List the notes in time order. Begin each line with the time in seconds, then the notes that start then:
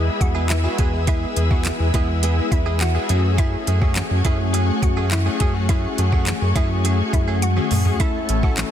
Already playing: G#3 B3 E4 G#4 B4 E5 G#5 E6
0.06 muted clean electric guitar stroke
0.21 E2 F#4 F#5, muted clean electric guitar stroke, kick, closed hi-hat
0.35 G#3 B3 E4 G#4
0.50 E4 E5, muted clean electric guitar stroke, snare, clap, closed hi-hat
0.64 G#3 B3 E4 F#4 G#4
0.78 E2 G#3 B3 E4 G#4 G#5, kick, closed hi-hat
0.93 G#3 B3 E4 G#4, muted clean electric guitar stroke
1.07 G#3 B3 E4 G#4 E5, kick, closed hi-hat
1.36 E2 G#3 B3 E4 G#4, closed hi-hat
1.50 G#3 B3 E4 F#4 G#4 F#5, kick
1.65 snare, clap, closed hi-hat
1.79 E2, muted clean electric guitar stroke
1.94 E2 G#3 B3 E4 G#4 E5, kick, closed hi-hat
2.09 muted clean electric guitar stroke
2.23 G#3 B3 E4 G#4, closed hi-hat
2.38 muted clean electric guitar stroke
2.52 E2 E4 E5, muted clean electric guitar stroke, kick, closed hi-hat
2.66 G#3 B3 E4 G#4
2.80 F#4 F#5, muted clean electric guitar stroke, snare, clap, closed hi-hat
2.95 G#3 B3 E4 G#4
3.09 F#2 F#3 A3 C#4 F#4 G#4 F#5 G#5 C#6, closed hi-hat
3.24 muted clean electric guitar stroke
3.38 F#3 A3 C#4 E4 G#4 E5, kick, closed hi-hat
3.67 F#2 F#3 A3 C#4 G#4, closed hi-hat
3.81 F#3 A3 C#4 F#4 G#4 F#5, kick
3.96 snare, clap, closed hi-hat
4.10 F#2, muted clean electric guitar stroke
4.25 F#2 F#3 A3 C#4 E4 F#4 G#4 E5, kick, closed hi-hat
4.39 muted clean electric guitar stroke
4.53 F#3 A3 C#4 G#4, closed hi-hat
4.68 muted clean electric guitar stroke
4.82 F#2 F#4 F#5, muted clean electric guitar stroke, kick, closed hi-hat
4.97 F#3 A3 C#4 G#4
5.11 E4 E5, muted clean electric guitar stroke, snare, clap, closed hi-hat
5.25 F#3 A3 C#4 F#4 G#4
5.40 F#2 F#3 A3 C#4 G#4 G#5, kick, closed hi-hat
5.54 A3 C#4 F#4 G#4, muted clean electric guitar stroke
5.69 F#3 A3 C#4 E4 F#4 G#4 E5, kick, closed hi-hat
5.98 F#2 F#3 A3 C#4 G#4, closed hi-hat
6.12 F#3 A3 C#4 F#4 G#4 F#5, kick
6.27 snare, clap, closed hi-hat
6.41 F#2, muted clean electric guitar stroke
6.55 F#2 F#3 A3 C#4 E4 F#4 G#4 E5, kick, closed hi-hat
6.70 muted clean electric guitar stroke
6.84 F#3 A3 C#4 G#4, closed hi-hat
6.99 muted clean electric guitar stroke
7.13 F#2 E4 E5, muted clean electric guitar stroke, kick, closed hi-hat
7.28 F#3 A3 C#4 G#4
7.42 F#4 F#5, muted clean electric guitar stroke, closed hi-hat, high tom
7.56 F#3 A3 C#4 F#4 G#4, mid tom
7.71 F#2 F#3 A3 C#4 G#4, mid tom, open hi-hat
7.85 A3 C#4 F#4 G#4, muted clean electric guitar stroke, floor tom
7.99 A3 C#4 E4 A4 C#5 E5 C#6, kick, closed hi-hat
8.29 A1 A3 C#4 E4 A4, closed hi-hat
8.43 A3 C#4 E4 F#4 A4 F#5, kick
8.57 snare, clap, closed hi-hat